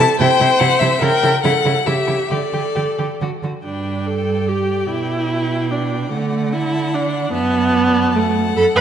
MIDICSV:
0, 0, Header, 1, 5, 480
1, 0, Start_track
1, 0, Key_signature, 1, "major"
1, 0, Tempo, 413223
1, 1174, Time_signature, 3, 2, 24, 8
1, 1670, Tempo, 438596
1, 4550, Tempo, 408163
1, 10124, End_track
2, 0, Start_track
2, 0, Title_t, "Violin"
2, 0, Program_c, 0, 40
2, 0, Note_on_c, 0, 81, 124
2, 221, Note_off_c, 0, 81, 0
2, 230, Note_on_c, 0, 79, 127
2, 683, Note_on_c, 0, 78, 127
2, 701, Note_off_c, 0, 79, 0
2, 919, Note_on_c, 0, 76, 113
2, 937, Note_off_c, 0, 78, 0
2, 1184, Note_on_c, 0, 79, 125
2, 1202, Note_off_c, 0, 76, 0
2, 1651, Note_off_c, 0, 79, 0
2, 1658, Note_on_c, 0, 78, 116
2, 2139, Note_on_c, 0, 76, 102
2, 2155, Note_off_c, 0, 78, 0
2, 2621, Note_on_c, 0, 74, 91
2, 2637, Note_off_c, 0, 76, 0
2, 3606, Note_off_c, 0, 74, 0
2, 4091, Note_on_c, 0, 71, 54
2, 4554, Note_on_c, 0, 74, 62
2, 4572, Note_off_c, 0, 71, 0
2, 6001, Note_on_c, 0, 71, 59
2, 6018, Note_off_c, 0, 74, 0
2, 6482, Note_off_c, 0, 71, 0
2, 6489, Note_on_c, 0, 74, 68
2, 7432, Note_off_c, 0, 74, 0
2, 7454, Note_on_c, 0, 81, 76
2, 7944, Note_on_c, 0, 78, 80
2, 7962, Note_off_c, 0, 81, 0
2, 8383, Note_off_c, 0, 78, 0
2, 8390, Note_on_c, 0, 76, 76
2, 8874, Note_on_c, 0, 74, 78
2, 8892, Note_off_c, 0, 76, 0
2, 9338, Note_off_c, 0, 74, 0
2, 9345, Note_on_c, 0, 78, 91
2, 10124, Note_off_c, 0, 78, 0
2, 10124, End_track
3, 0, Start_track
3, 0, Title_t, "Viola"
3, 0, Program_c, 1, 41
3, 0, Note_on_c, 1, 69, 100
3, 212, Note_off_c, 1, 69, 0
3, 230, Note_on_c, 1, 72, 100
3, 1158, Note_off_c, 1, 72, 0
3, 1181, Note_on_c, 1, 70, 101
3, 1660, Note_off_c, 1, 70, 0
3, 1667, Note_on_c, 1, 69, 81
3, 2130, Note_off_c, 1, 69, 0
3, 2140, Note_on_c, 1, 67, 82
3, 2628, Note_on_c, 1, 69, 74
3, 2645, Note_off_c, 1, 67, 0
3, 3853, Note_off_c, 1, 69, 0
3, 4082, Note_on_c, 1, 62, 64
3, 4545, Note_on_c, 1, 69, 73
3, 4562, Note_off_c, 1, 62, 0
3, 5038, Note_on_c, 1, 67, 65
3, 5056, Note_off_c, 1, 69, 0
3, 5514, Note_off_c, 1, 67, 0
3, 5521, Note_on_c, 1, 64, 85
3, 6483, Note_on_c, 1, 62, 72
3, 6500, Note_off_c, 1, 64, 0
3, 6963, Note_off_c, 1, 62, 0
3, 6971, Note_on_c, 1, 57, 75
3, 7444, Note_on_c, 1, 64, 87
3, 7462, Note_off_c, 1, 57, 0
3, 7931, Note_on_c, 1, 62, 76
3, 7949, Note_off_c, 1, 64, 0
3, 8378, Note_off_c, 1, 62, 0
3, 8385, Note_on_c, 1, 59, 109
3, 9361, Note_on_c, 1, 57, 85
3, 9379, Note_off_c, 1, 59, 0
3, 9825, Note_off_c, 1, 57, 0
3, 9832, Note_on_c, 1, 69, 115
3, 9926, Note_off_c, 1, 69, 0
3, 10065, Note_on_c, 1, 71, 100
3, 10124, Note_off_c, 1, 71, 0
3, 10124, End_track
4, 0, Start_track
4, 0, Title_t, "Violin"
4, 0, Program_c, 2, 40
4, 0, Note_on_c, 2, 64, 80
4, 92, Note_off_c, 2, 64, 0
4, 239, Note_on_c, 2, 64, 79
4, 330, Note_off_c, 2, 64, 0
4, 463, Note_on_c, 2, 64, 77
4, 556, Note_off_c, 2, 64, 0
4, 699, Note_on_c, 2, 64, 75
4, 792, Note_off_c, 2, 64, 0
4, 941, Note_on_c, 2, 64, 69
4, 1034, Note_off_c, 2, 64, 0
4, 1175, Note_on_c, 2, 64, 76
4, 1268, Note_off_c, 2, 64, 0
4, 1428, Note_on_c, 2, 64, 67
4, 1521, Note_off_c, 2, 64, 0
4, 1677, Note_on_c, 2, 64, 77
4, 1765, Note_off_c, 2, 64, 0
4, 1904, Note_on_c, 2, 64, 66
4, 1991, Note_off_c, 2, 64, 0
4, 2137, Note_on_c, 2, 64, 66
4, 2224, Note_off_c, 2, 64, 0
4, 2365, Note_on_c, 2, 64, 58
4, 2452, Note_off_c, 2, 64, 0
4, 2619, Note_on_c, 2, 67, 60
4, 2707, Note_off_c, 2, 67, 0
4, 2868, Note_on_c, 2, 67, 59
4, 2955, Note_off_c, 2, 67, 0
4, 3111, Note_on_c, 2, 67, 59
4, 3199, Note_off_c, 2, 67, 0
4, 3363, Note_on_c, 2, 67, 52
4, 3450, Note_off_c, 2, 67, 0
4, 3617, Note_on_c, 2, 66, 59
4, 3705, Note_off_c, 2, 66, 0
4, 3858, Note_on_c, 2, 66, 49
4, 3946, Note_off_c, 2, 66, 0
4, 4077, Note_on_c, 2, 79, 46
4, 6912, Note_off_c, 2, 79, 0
4, 6968, Note_on_c, 2, 78, 50
4, 8350, Note_off_c, 2, 78, 0
4, 8382, Note_on_c, 2, 81, 65
4, 9778, Note_off_c, 2, 81, 0
4, 9841, Note_on_c, 2, 83, 66
4, 9934, Note_off_c, 2, 83, 0
4, 10080, Note_on_c, 2, 83, 62
4, 10124, Note_off_c, 2, 83, 0
4, 10124, End_track
5, 0, Start_track
5, 0, Title_t, "Cello"
5, 0, Program_c, 3, 42
5, 230, Note_on_c, 3, 48, 97
5, 323, Note_off_c, 3, 48, 0
5, 467, Note_on_c, 3, 48, 82
5, 560, Note_off_c, 3, 48, 0
5, 704, Note_on_c, 3, 48, 90
5, 797, Note_off_c, 3, 48, 0
5, 940, Note_on_c, 3, 48, 86
5, 1033, Note_off_c, 3, 48, 0
5, 1176, Note_on_c, 3, 49, 89
5, 1269, Note_off_c, 3, 49, 0
5, 1428, Note_on_c, 3, 49, 80
5, 1521, Note_off_c, 3, 49, 0
5, 1673, Note_on_c, 3, 49, 85
5, 1760, Note_off_c, 3, 49, 0
5, 1902, Note_on_c, 3, 49, 79
5, 1989, Note_off_c, 3, 49, 0
5, 2139, Note_on_c, 3, 49, 80
5, 2227, Note_off_c, 3, 49, 0
5, 2374, Note_on_c, 3, 49, 71
5, 2461, Note_off_c, 3, 49, 0
5, 2622, Note_on_c, 3, 50, 67
5, 2709, Note_off_c, 3, 50, 0
5, 2867, Note_on_c, 3, 50, 61
5, 2955, Note_off_c, 3, 50, 0
5, 3116, Note_on_c, 3, 50, 66
5, 3203, Note_off_c, 3, 50, 0
5, 3367, Note_on_c, 3, 50, 64
5, 3455, Note_off_c, 3, 50, 0
5, 3611, Note_on_c, 3, 50, 72
5, 3699, Note_off_c, 3, 50, 0
5, 3848, Note_on_c, 3, 50, 59
5, 3935, Note_off_c, 3, 50, 0
5, 4089, Note_on_c, 3, 43, 54
5, 5475, Note_off_c, 3, 43, 0
5, 5526, Note_on_c, 3, 47, 56
5, 6939, Note_off_c, 3, 47, 0
5, 6963, Note_on_c, 3, 50, 60
5, 8366, Note_off_c, 3, 50, 0
5, 8386, Note_on_c, 3, 42, 70
5, 9798, Note_off_c, 3, 42, 0
5, 9816, Note_on_c, 3, 42, 79
5, 9910, Note_off_c, 3, 42, 0
5, 10059, Note_on_c, 3, 42, 72
5, 10124, Note_off_c, 3, 42, 0
5, 10124, End_track
0, 0, End_of_file